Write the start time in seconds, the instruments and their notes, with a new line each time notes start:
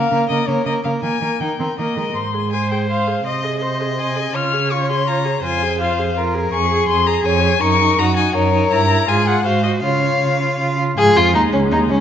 Already playing: viola A#3, violin A#4 F5
0.11 cello C#3, viola A#3, violin A#4
0.29 cello C#3, viola A#3, violin A#4 D#5
0.47 cello C#3, viola A#3, violin A#4 C#5
0.65 cello C#3, viola A#3, violin A#4 D#5
0.84 cello C#3, viola A#3, violin A#4 F5
1.03 cello D#3, viola A#3, violin A#4 G#5
1.21 cello D#3, viola A#3, violin A#4
1.40 cello D#3, viola D#4, violin A#4 G5
1.60 cello D#3, viola C4, violin A#4
1.78 cello D#3, viola A#3, violin A#4 D#5
1.97 cello D#3, viola G#3, violin A#4
2.15 cello G#2, viola C5, violin C6
2.34 viola G#4
2.52 violin C5 G#5, viola C5
2.71 viola G#4, violin G5
2.90 viola C5, violin F5
3.08 viola G#4
3.26 cello C3, viola C5, violin D#5
3.44 viola G#4
3.62 viola C5, violin C5 D#5
3.81 viola G#4
3.98 viola C5, violin G#5
4.16 viola G#4
4.34 cello C#3, viola F4, violin C#5 F6
4.53 viola G#4
4.71 viola F4, violin C#6
4.89 viola G#4, violin C6
5.07 viola F4, violin A#5
5.25 viola G#4
5.44 cello F2, viola F4, violin C5 G#5
5.62 viola G#4
5.80 viola F4, violin F5
5.98 viola G#4
6.17 viola F4, violin A#4
6.35 viola G#4
6.52 cello F2, violin G#4 C#6, viola G#4
6.71 viola G#4
6.88 cello F2, viola G#4, violin C6
7.07 viola G#4, violin A#5
7.25 cello F2, viola G#4, violin C#5 G#5
7.44 viola G#4
7.61 cello F#2, viola D#4, violin A#4 C#6
7.81 viola D#4
7.99 cello F#2, viola D#4, violin F#4 A#5
8.16 viola D#4, violin G#5
8.35 cello F#2, viola D#4, violin A#4 C#5
8.54 viola D#4
8.71 cello G2, viola E4, violin A#5
8.90 viola E4
9.08 cello G#2, viola F4, violin G#4 G#5
9.27 viola F4, violin F#5
9.45 cello G#2, viola F#4, violin C5 F5
9.64 viola F#4, violin D#5
9.83 cello C#3, viola F4, violin C#5 F5
10.04 viola F4
10.22 cello C#3, viola F4
10.41 viola F4
10.60 cello C#3, viola F4
10.79 viola F4
10.97 cello G#2, viola F3, violin G#4
11.16 cello F2, violin F4
11.35 cello D#2, viola G#3, violin D#4
11.53 cello C#2, violin C#4
11.72 cello D#2, violin D#4
11.90 cello C#2, violin C#4